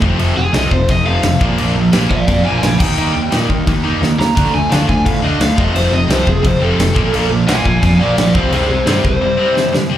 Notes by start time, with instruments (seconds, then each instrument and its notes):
0.01 picked electric bass F1, distorted electric guitar F2 C3 F3 A3 C4, kick
0.17 picked electric bass F1, distorted electric guitar F2 C3 F3, crash
0.35 picked electric bass F1, distorted electric guitar F2 C3, overdriven electric guitar G#4
0.52 picked electric bass C2, distorted electric guitar F2 C3 F3, overdriven electric guitar D#5, snare, crash
0.71 picked electric bass F1, distorted electric guitar F2 C3, overdriven electric guitar C5, kick
0.88 picked electric bass F1, distorted electric guitar F2 C3 F3 A3 C4, overdriven electric guitar D#5, kick, crash
1.05 distorted electric guitar F2 C3 F3 A3 C4, overdriven electric guitar F5
1.09 distorted electric guitar F2
1.23 picked electric bass F1, distorted electric guitar F2 C3, snare, crash
1.39 picked electric bass A#1, distorted electric guitar A#2 F3 A#3 D4, kick
1.57 picked electric bass A#1, distorted electric guitar A#2 F3 A#3, crash
1.75 picked electric bass A#1, distorted electric guitar A#2 F3
1.92 picked electric bass A#1, distorted electric guitar A#2 F3 A#3, snare, crash
2.10 picked electric bass A#1, distorted electric guitar A#2 F3, overdriven electric guitar D5 F5, kick
2.27 picked electric bass F2, distorted electric guitar A#2 F3 A#3 D4, overdriven electric guitar D5 F5, kick, crash
2.43 picked electric bass A#1, distorted electric guitar A#2 F3 A#3 D4, overdriven electric guitar F5 G#5
2.62 picked electric bass A#1, distorted electric guitar A#2 F3, overdriven electric guitar F5 G#5, snare, crash
2.79 picked electric bass D#2, distorted electric guitar D#3 G3 A#3 D#4, overdriven electric guitar G5, kick, crash
2.97 picked electric bass D#2, distorted electric guitar D#3 A#3 D#4, crash
3.14 picked electric bass D#2, distorted electric guitar D#3 A#3
3.31 picked electric bass A#2, distorted electric guitar D#3 A#3 D#4, snare, crash
3.49 picked electric bass D#2, distorted electric guitar D#3 A#3, kick
3.67 picked electric bass D#2, distorted electric guitar D#3 G3 A#3 D#4, kick, crash
3.84 distorted electric guitar D#3 G3 A#3 D#4
4.01 picked electric bass D#2, distorted electric guitar D#3 A#3, snare
4.19 picked electric bass D#2, distorted electric guitar D#3 A#3, overdriven electric guitar A#5, snare
4.35 picked electric bass D2, distorted electric guitar D3 F3 A3 D4, kick, crash
4.52 picked electric bass D2, distorted electric guitar D3 A3, overdriven electric guitar G#5
4.70 picked electric bass D2, distorted electric guitar D3 A3 D4, overdriven electric guitar F5, snare, crash
4.88 picked electric bass D2, distorted electric guitar D3 A3, overdriven electric guitar G#5, kick
5.05 picked electric bass A2, distorted electric guitar D3 A3, overdriven electric guitar F5, kick, crash
5.22 picked electric bass D2, distorted electric guitar D3 F3 A3 D4, overdriven electric guitar D#5
5.39 picked electric bass D2, distorted electric guitar D3 F3 A3 D4, overdriven electric guitar F5, snare, crash
5.56 picked electric bass F1, distorted electric guitar F2 C3 F3 A3 C4, overdriven electric guitar D#5, kick
5.73 picked electric bass F1, distorted electric guitar F2 C3 F3, overdriven electric guitar C5, crash
5.91 picked electric bass F1, distorted electric guitar F2 C3, overdriven electric guitar D#5
6.08 picked electric bass C2, distorted electric guitar F2 C3 F3, overdriven electric guitar C5, snare, crash
6.25 picked electric bass F1, distorted electric guitar F2 C3, kick
6.29 overdriven electric guitar G#4
6.42 picked electric bass F1, distorted electric guitar F2 C3 F3 A3, overdriven electric guitar C5, kick, crash
6.47 distorted electric guitar C4
6.60 distorted electric guitar F2 C3 F3 A3 C4, overdriven electric guitar A4
6.77 picked electric bass F1, distorted electric guitar F2 C3, snare, crash
6.94 picked electric bass A#1, distorted electric guitar A#2 F3 A#3, kick
6.99 distorted electric guitar D4
7.11 picked electric bass A#1, distorted electric guitar A#2 F3 A#3, crash
7.29 picked electric bass A#1, distorted electric guitar A#2 F3
7.47 picked electric bass A#1, distorted electric guitar A#2 F3 A#3, overdriven electric guitar F5 G#5, snare, crash
7.65 picked electric bass A#1, distorted electric guitar A#2 F3, overdriven electric guitar F5 G#5, kick
7.82 picked electric bass F2, distorted electric guitar A#2 F3 A#3 D4, overdriven electric guitar F5 G#5, kick, crash
7.99 picked electric bass A#1, distorted electric guitar A#2 F3 A#3 D4, overdriven electric guitar D5 F5
8.17 picked electric bass A#1, distorted electric guitar A#2 F3, overdriven electric guitar D5 F5, snare, crash
8.34 picked electric bass C2, distorted electric guitar C3 G3 C4 E4, overdriven electric guitar C5 F5, kick
8.51 picked electric bass C2, distorted electric guitar C3 G3 C4, overdriven electric guitar G#4 C5, crash
8.69 picked electric bass C2, distorted electric guitar C3 G3, overdriven electric guitar G#4 C5
8.86 picked electric bass G2, distorted electric guitar C3 G3 C4, overdriven electric guitar G#4 C5, snare, crash
9.03 picked electric bass C2, distorted electric guitar C3 G3, overdriven electric guitar C5, kick
9.21 distorted electric guitar C3 G3 C4 E4
9.37 distorted electric guitar C3 G3 C4 E4
9.55 distorted electric guitar C3 G3, snare
9.73 distorted electric guitar C3 G3, snare
9.90 distorted electric guitar C3 G3
9.94 distorted electric guitar C4